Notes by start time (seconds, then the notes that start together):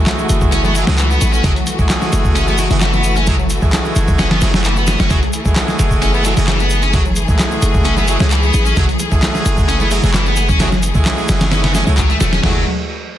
Already playing: E3 G#3 A3 E4 F#4 G#4
0.06 snare, clap, closed hi-hat, muted conga, shaker
0.19 shaker
0.29 F#1, closed hi-hat, shaker
0.41 kick, shaker
0.52 C#4, closed hi-hat, muted conga, shaker
0.64 B3, high conga, shaker
0.75 F#3 G#3 A3 E4 F#4 G#4, closed hi-hat, shaker
0.87 C#2 G#3 A3 E4 F#4 G#4, snare, muted conga, high conga, low conga, shaker
0.98 E3, clap, closed hi-hat, shaker
1.11 B3, shaker
1.21 A1, closed hi-hat, high conga, shaker
1.32 C#4, muted conga, shaker
1.43 F#1 F#3 G#3 A3 E4 F#4 G#4, kick, closed hi-hat, low conga, shaker
1.56 closed hi-hat, shaker
1.67 closed hi-hat, muted conga, shaker
1.79 G#3 A3 E4 F#4 G#4, kick, shaker
1.89 snare, clap, closed hi-hat, shaker
2.02 snare, shaker
2.12 F#1, closed hi-hat, muted conga, shaker
2.25 kick, shaker
2.35 C#4, closed hi-hat, shaker
2.47 B3, muted conga, shaker
2.58 F#3 G#3 A3 E4 F#4 G#4, closed hi-hat, shaker
2.70 F#1 G#3 A3 E4 F#4 G#4, closed hi-hat, low conga, shaker
2.81 E3, snare, clap, closed hi-hat, shaker
2.93 B3, muted conga, shaker
3.04 closed hi-hat, shaker
3.16 C#4, closed hi-hat, high conga, shaker
3.27 F#3 G#3 A3 E4 F#4 G#4, kick, closed hi-hat, muted conga, low conga, shaker
3.39 shaker
3.50 closed hi-hat, shaker
3.62 G#3 A3 E4 F#4 G#4, kick, shaker
3.73 snare, clap, closed hi-hat, muted conga, shaker
3.85 shaker
3.96 F#1, closed hi-hat, shaker
4.08 kick, muted conga, shaker
4.19 C#4, snare, closed hi-hat, shaker
4.31 B3, snare, closed hi-hat, high conga, shaker
4.41 F#1 F#3 G#3 A3 E4 F#4 G#4, snare, closed hi-hat, shaker
4.53 G#3 A3 E4 F#4 G#4, snare, muted conga, high conga, low conga, shaker
4.64 E3, clap, closed hi-hat, shaker
4.76 B3, shaker
4.87 snare, closed hi-hat, muted conga, high conga, shaker
4.99 F#1 C#4, snare, closed hi-hat, shaker
5.10 F#1 F#3 G#3 A3 E4 F#4 G#4, kick, closed hi-hat, low conga, shaker
5.22 closed hi-hat, shaker
5.33 closed hi-hat, shaker
5.45 G#3 A3 E4 F#4 G#4, kick, muted conga, shaker
5.56 snare, clap, closed hi-hat, shaker
5.68 snare, shaker
5.79 F#1, closed hi-hat, muted conga, shaker
5.91 kick, shaker
6.02 C#4, closed hi-hat, shaker
6.14 B3, shaker
6.24 F#3 G#3 A3 E4 F#4 G#4, closed hi-hat, muted conga, shaker
6.37 F#1 G#3 A3 E4 F#4 G#4, closed hi-hat, low conga, shaker
6.47 E3, snare, clap, closed hi-hat, shaker
6.59 B3, muted conga, shaker
6.70 closed hi-hat, shaker
6.82 C#4, closed hi-hat, high conga, shaker
6.93 F#3 G#3 A3 E4 F#4 G#4, kick, closed hi-hat, low conga, shaker
7.05 muted conga, shaker
7.16 closed hi-hat, shaker
7.28 G#3 A3 E4 F#4 G#4, kick, shaker
7.39 snare, clap, closed hi-hat, muted conga, shaker
7.51 shaker
7.62 F#1, closed hi-hat, shaker
7.74 kick, shaker
7.84 C#4, closed hi-hat, muted conga, shaker
7.97 B3, high conga, shaker
8.08 F#3 G#3 A3 E4 F#4 G#4, closed hi-hat, shaker
8.19 C#2 G#3 A3 E4 F#4 G#4, snare, muted conga, high conga, low conga, shaker
8.31 E3, clap, closed hi-hat, shaker
8.43 B3, shaker
8.54 A1, closed hi-hat, high conga, shaker
8.66 C#4, muted conga, shaker
8.76 F#1 F#3 G#3 A3 E4 F#4 G#4, kick, closed hi-hat, low conga, shaker
8.89 closed hi-hat, shaker
8.99 closed hi-hat, muted conga, shaker
9.12 G#3 A3 E4 F#4 G#4, kick, shaker
9.23 snare, clap, closed hi-hat, shaker
9.35 snare, shaker
9.45 F#1, closed hi-hat, muted conga, shaker
9.58 kick, shaker
9.68 C#4, closed hi-hat, shaker
9.80 B3, muted conga, shaker
9.91 F#3 G#3 A3 E4 F#4 G#4, closed hi-hat, shaker
10.03 F#1 G#3 A3 E4 F#4 G#4, closed hi-hat, low conga, shaker
10.14 E3, snare, clap, closed hi-hat, shaker
10.26 B3, muted conga, shaker
10.36 closed hi-hat, shaker
10.49 C#4, kick, high conga, shaker
10.59 F#3 G#3 A3 E4 F#4 G#4, snare, closed hi-hat, muted conga, low conga, shaker
10.72 snare, shaker
10.83 closed hi-hat, shaker
10.94 G#3 A3 E4 F#4 G#4, kick, low conga, shaker
11.05 snare, clap, closed hi-hat, muted conga, shaker
11.18 high conga, shaker
11.28 F#1, snare, closed hi-hat, shaker
11.41 snare, closed hi-hat, muted conga, shaker
11.52 C#4, snare, closed hi-hat, shaker
11.64 B3, snare, closed hi-hat, high conga, shaker
11.74 G#3 A3 C#4 E4 F#4 G#4, snare, closed hi-hat, shaker
11.87 C#2 G#3 A3 E4 F#4 G#4, muted conga, high conga, low conga, shaker
11.98 F#3, kick, clap, closed hi-hat, shaker
12.09 A3, closed hi-hat, shaker
12.20 E1 A3, snare, closed hi-hat, muted conga, high conga, shaker
12.32 C#4, snare, closed hi-hat, shaker
12.43 F#1 E3 F#3 G#3 A3 E4 F#4 G#4, snare, floor tom, crash